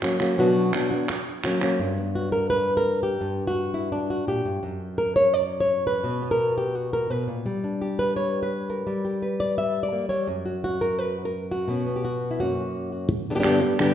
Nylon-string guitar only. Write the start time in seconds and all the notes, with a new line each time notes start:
0.02 F#3 A#3 C#4 F#4
0.20 F#3 A#3 C#4 F#4
0.38 B2 F#3 B3 D4 F#4
0.74 F#3 B3 D4 F#4
0.91 B3 D4 F#4
1.09 muted nylon-string guitar stroke
1.44 F#3 A#3 C#4 F#4
1.62 F#3 A#3 C#4 F#4
1.79 G2
1.98 B3
2.15 F#4
2.32 A#4
2.50 B4
2.77 A#4
3.03 G4
3.21 G2
3.47 F#4
3.74 E4
3.92 D4
4.10 F#4
4.27 A#2 G4
4.45 G2
4.63 F#2
4.98 A#4
5.16 C#5
5.34 D5
5.60 C#5
5.87 B4
6.04 B2
6.22 B3
6.31 A#4
6.58 G4
6.75 F#4
6.93 A#4
7.10 B2 B4
7.27 A#2
7.46 G3
7.64 D4
7.81 G4
7.99 B4
8.16 C#5
8.43 B4
8.70 A#4
8.87 G3
9.05 G4
9.22 B4
9.40 D5
9.58 E5
9.83 D5
9.92 A#3
10.09 G3 C#5
10.27 F#2
10.46 F#4
10.64 F#4
10.81 A#4
10.99 B4
11.25 A#4
11.51 F#4
11.68 B2 B3 C#4
11.86 B3
11.96 G4
12.05 F#4
12.31 E4
12.39 F#2 A#3 C#4 F#4
12.57 C#4
12.92 F#4
13.09 muted nylon-string guitar stroke
13.30 D3 G3 B3 D4 G4
13.35 D3 G3 B3 D4 G4
13.39 D3 G3 B3 D4 G4
13.44 G2 D3 G3 B3 D4 G4
13.61 G3 D4 G4
13.79 G2 D3 G3 B3 D4 G4